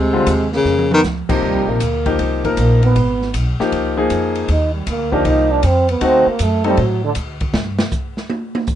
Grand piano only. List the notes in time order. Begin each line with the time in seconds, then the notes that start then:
0.13 D3 G3 C4 F4
1.29 C3 F3 A#3 D#4 G4
2.06 F3 A#3 D#4 G4
2.45 F3 A#3 D#4 A#4
3.60 F3 A#3 D#4 G4
3.97 F3 A#3 D#4 G#4
5.12 F3 A#3 D#4 G4
6.01 A3 C4 D#4 F#4
6.64 A3 C4 D#4 A4